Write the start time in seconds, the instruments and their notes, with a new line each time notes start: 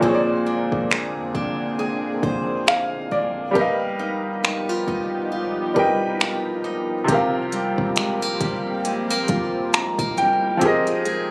Already playing: analog synth pad A#3, steel-string acoustic guitar D#4 G#4
0.00 808-style bass A#1, grand piano A#2 F3 C4, analog synth pad D3 C4 G#4, steel-string acoustic guitar A#3 C5, kick
0.06 grand piano G#4 C#5
0.15 grand piano D5
0.46 steel-string acoustic guitar D4
0.72 808-style bass A#1, kick
0.91 steel-string acoustic guitar G#4, finger snap
1.17 808-style bass F2
1.35 808-style bass A#1, steel-string acoustic guitar D4, kick
1.79 steel-string acoustic guitar G#4
2.23 808-style bass A#1, steel-string acoustic guitar C5, kick
2.67 steel-string acoustic guitar G#4, grand piano F5, finger snap
3.11 808-style bass A#1, steel-string acoustic guitar D4, grand piano D5
3.51 grand piano G3 G4 A#4
3.55 808-style bass G1, analog synth pad F3 B3 D#4 G4, steel-string acoustic guitar G3 B4, grand piano B4 D#5, kick
3.61 grand piano F5
3.99 steel-string acoustic guitar D#4
4.44 steel-string acoustic guitar D#4, finger snap
4.69 steel-string acoustic guitar F4
4.88 808-style bass F1, steel-string acoustic guitar D#4, kick
5.32 808-style bass C#2, steel-string acoustic guitar F4
5.58 808-style bass F1
5.74 808-style bass F1, grand piano G3 G4 A#4 B4, steel-string acoustic guitar B4, kick
5.78 grand piano D#5 G5
6.20 steel-string acoustic guitar F4, finger snap
6.64 steel-string acoustic guitar D#4
7.04 grand piano C3 C4, steel-string acoustic guitar C3, kick
7.08 808-style bass C2, analog synth pad A#3 C4 G4, steel-string acoustic guitar F4, grand piano G4 A#4, closed hi-hat
7.14 grand piano F5
7.52 steel-string acoustic guitar G3, closed hi-hat
7.78 808-style bass C2, kick
7.96 steel-string acoustic guitar G#3, finger snap, closed hi-hat
8.22 steel-string acoustic guitar A#3
8.41 808-style bass C2, steel-string acoustic guitar G3, kick, closed hi-hat
8.85 steel-string acoustic guitar G#3, closed hi-hat
9.10 steel-string acoustic guitar A#3
9.28 808-style bass D#2, steel-string acoustic guitar F4, kick, closed hi-hat
9.73 steel-string acoustic guitar G#3, grand piano A#5, finger snap, closed hi-hat
9.99 808-style bass C2, steel-string acoustic guitar A#3, kick
10.17 808-style bass C2, steel-string acoustic guitar G3, grand piano G5, closed hi-hat
10.57 grand piano F3 C4, steel-string acoustic guitar F3
10.61 808-style bass F1, analog synth pad D#3 G#3 A#3 G5, grand piano G4 G#4 A#4, kick, closed hi-hat
10.67 grand piano D#5
10.87 steel-string acoustic guitar D#4, closed hi-hat
11.05 steel-string acoustic guitar G#4, closed hi-hat